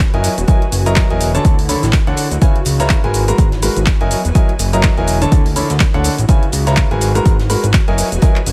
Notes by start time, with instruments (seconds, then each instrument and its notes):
Already playing: ambient pad G#5
0.00 kick, snare, closed hi-hat, shaker
0.14 analog synth bass F#1, grand piano F#3 E4 A#4 D#5 G#5, closed hi-hat
0.24 closed hi-hat, open hi-hat, shaker
0.38 analog synth bass E1, closed hi-hat, shaker
0.48 grand piano F#3 E4 A#4 D#5 G#5, kick, closed hi-hat, shaker
0.62 closed hi-hat
0.72 analog synth bass F#1, closed hi-hat, open hi-hat, shaker
0.86 grand piano F#3 E4 A#4 D#5 A#5, closed hi-hat, shaker
0.96 kick, snare, clap, closed hi-hat, shaker
1.10 analog synth bass E1, grand piano F#3 E4 A#4 D#5 G#5, closed hi-hat
1.21 closed hi-hat, open hi-hat, shaker
1.35 grand piano D3 D4 A4 C#5 A5, closed hi-hat, shaker
1.45 analog synth bass D2, kick, closed hi-hat, shaker
1.59 open hi-hat
1.69 grand piano D3 D4 A4 C#5 B5, closed hi-hat, open hi-hat, shaker
1.83 analog synth bass A1, snare, closed hi-hat, shaker
1.93 kick, snare, clap, closed hi-hat, shaker
2.07 analog synth bass D2, grand piano D3 D4 A4 C#5 F#5, closed hi-hat
2.17 closed hi-hat, open hi-hat, shaker
2.31 analog synth bass D2, closed hi-hat, shaker
2.42 grand piano C#3 E4 B4 C#5 G#5, kick, closed hi-hat, shaker
2.56 closed hi-hat
2.65 analog synth bass C#2, closed hi-hat, open hi-hat, shaker
2.76 ambient pad G#5, snare
2.80 grand piano C#3 E4 B4 C#5 A#5, closed hi-hat, shaker
2.89 kick, snare, clap, closed hi-hat, shaker
3.04 analog synth bass G#1, grand piano G#3 F#4 A#4 B4 G#5, closed hi-hat
3.14 closed hi-hat, open hi-hat, shaker
3.28 grand piano G#3 F#4 A#4 B4 A#5, closed hi-hat, shaker
3.38 analog synth bass G#1, kick, closed hi-hat, shaker
3.52 snare, closed hi-hat
3.62 grand piano G#3 F#4 A#4 B4 B5, closed hi-hat, open hi-hat, shaker
3.77 analog synth bass G#1, closed hi-hat, shaker
3.86 kick, snare, clap, closed hi-hat, shaker
4.01 analog synth bass F#1, grand piano F#3 E4 A#4 D#5 G#5, closed hi-hat
4.11 closed hi-hat, open hi-hat, shaker
4.25 analog synth bass E1, closed hi-hat, shaker
4.35 grand piano F#3 E4 A#4 D#5 G#5, kick, closed hi-hat, shaker
4.49 closed hi-hat
4.59 analog synth bass F#1, closed hi-hat, open hi-hat, shaker
4.73 grand piano F#3 E4 A#4 D#5 A#5, closed hi-hat, shaker
4.83 kick, snare, clap, closed hi-hat, shaker
4.97 analog synth bass E1, grand piano F#3 E4 A#4 D#5 G#5, closed hi-hat
5.07 closed hi-hat, open hi-hat, shaker
5.22 grand piano D3 D4 A4 C#5 A5, closed hi-hat, shaker
5.32 analog synth bass D2, kick, closed hi-hat, shaker
5.46 open hi-hat
5.56 grand piano D3 D4 A4 C#5 B5, closed hi-hat, open hi-hat, shaker
5.69 analog synth bass D2, snare, closed hi-hat, shaker
5.80 kick, snare, clap, closed hi-hat, shaker
5.94 analog synth bass D2, grand piano D3 D4 A4 C#5 F#5, closed hi-hat
6.04 closed hi-hat, open hi-hat, shaker
6.18 analog synth bass A1, closed hi-hat, shaker
6.29 grand piano C#3 E4 B4 C#5 G#5, kick, closed hi-hat, shaker
6.43 closed hi-hat
6.52 analog synth bass C#2, closed hi-hat, open hi-hat, shaker
6.63 ambient pad G#5
6.67 grand piano C#3 E4 B4 C#5 A#5, snare, closed hi-hat, shaker
6.76 kick, snare, clap, closed hi-hat, shaker
6.91 analog synth bass G#1, grand piano G#3 F#4 A#4 B4 G#5, closed hi-hat
7.01 closed hi-hat, open hi-hat, shaker
7.15 grand piano G#3 F#4 A#4 B4 A#5, closed hi-hat, shaker
7.26 analog synth bass G#1, kick, closed hi-hat, shaker
7.39 snare, closed hi-hat
7.50 grand piano G#3 F#4 A#4 B4 B5, closed hi-hat, open hi-hat, shaker
7.64 analog synth bass G#1, closed hi-hat, shaker
7.73 kick, snare, clap, closed hi-hat, shaker
7.88 analog synth bass F#1, grand piano F#3 E4 A#4 D#5 G#5, closed hi-hat
7.98 closed hi-hat, open hi-hat, shaker
8.12 analog synth bass E1, closed hi-hat, shaker
8.22 grand piano F#3 E4 A#4 D#5 G#5, kick, closed hi-hat, shaker
8.36 clap, closed hi-hat
8.46 analog synth bass F#1, closed hi-hat, open hi-hat, shaker